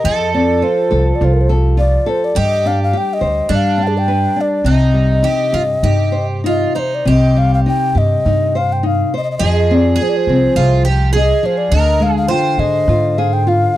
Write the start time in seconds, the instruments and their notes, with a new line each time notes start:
Already playing: ocarina D#5
0.04 upright bass F2, nylon-string guitar F3, twelve-string acoustic guitar A4
0.34 nylon-string guitar C4, ocarina D5
0.62 nylon-string guitar F4, ocarina C5
0.91 upright bass C2, nylon-string guitar A4
1.15 ocarina D5
1.21 upright bass C2, nylon-string guitar F4, ocarina C5
1.34 ocarina A#4
1.41 ocarina C5
1.49 nylon-string guitar A4
1.58 twelve-string acoustic guitar G4
1.77 nylon-string guitar F4, ocarina D5
2.06 nylon-string guitar A4, ocarina C5
2.24 ocarina D5
2.35 upright bass G2, nylon-string guitar G3, twelve-string acoustic guitar G4, ocarina D#5
2.65 nylon-string guitar D4, ocarina F5
2.83 ocarina F5
2.93 nylon-string guitar G4
2.98 ocarina G5
3.14 ocarina D#5
3.21 upright bass D2, nylon-string guitar C5
3.49 upright bass G2, nylon-string guitar G3, twelve-string acoustic guitar D4
3.55 ocarina F5
3.78 nylon-string guitar D4
3.83 ocarina G5
3.87 ocarina G#4
3.98 ocarina G5
4.08 nylon-string guitar B4
4.36 nylon-string guitar D4
4.41 ocarina D5
4.64 upright bass C2, nylon-string guitar C3, twelve-string acoustic guitar D#4
4.71 ocarina D#5
4.94 nylon-string guitar G3
5.23 nylon-string guitar D#4, twelve-string acoustic guitar G4
5.52 upright bass G2, twelve-string acoustic guitar F4, nylon-string guitar G4
5.83 upright bass G2, nylon-string guitar D#4, twelve-string acoustic guitar G4
6.12 nylon-string guitar C5
6.44 nylon-string guitar D#4, twelve-string acoustic guitar F4
6.48 ocarina D#5
6.75 twelve-string acoustic guitar D#4, nylon-string guitar C5
6.79 ocarina C5
6.95 ocarina D5
7.05 upright bass C2, nylon-string guitar C3, twelve-string acoustic guitar G4, ocarina D#5
7.36 nylon-string guitar G3, ocarina F5
7.54 ocarina F5
7.66 nylon-string guitar D#4, ocarina G5
7.95 upright bass G2, nylon-string guitar G4, ocarina D#5
8.25 upright bass G2, nylon-string guitar D#4
8.55 nylon-string guitar C5, ocarina F5
8.73 ocarina G5
8.83 nylon-string guitar D#4, ocarina F5
9.14 nylon-string guitar C5, ocarina D#5
9.24 ocarina D#5
9.31 ocarina D#5
9.38 upright bass F2, twelve-string acoustic guitar G#4, ocarina D#5
9.42 nylon-string guitar F3, ocarina D#5
9.52 ocarina D#5
9.58 ocarina D#5
9.71 nylon-string guitar C4, ocarina D5
9.96 twelve-string acoustic guitar G#4
10.01 nylon-string guitar G#4, ocarina C5
10.09 ocarina D5
10.17 ocarina C5
10.27 upright bass C2, nylon-string guitar C4
10.56 upright bass C2, twelve-string acoustic guitar F4, nylon-string guitar G#4
10.85 nylon-string guitar F3, twelve-string acoustic guitar G4
11.13 twelve-string acoustic guitar G#4, nylon-string guitar G#4
11.17 ocarina D#5
11.43 nylon-string guitar F3, ocarina C5
11.58 ocarina D5
11.71 upright bass D2, nylon-string guitar D3, twelve-string acoustic guitar A#4, ocarina D#5
12.00 nylon-string guitar G#3, ocarina F5
12.12 twelve-string acoustic guitar G#4
12.17 ocarina F5
12.28 nylon-string guitar F4, twelve-string acoustic guitar C5, ocarina G5
12.58 upright bass G#2, nylon-string guitar G#4, ocarina D#5
12.88 upright bass G#2, nylon-string guitar F4
13.18 nylon-string guitar G#4, ocarina F5
13.33 ocarina G5
13.47 nylon-string guitar F4, ocarina F5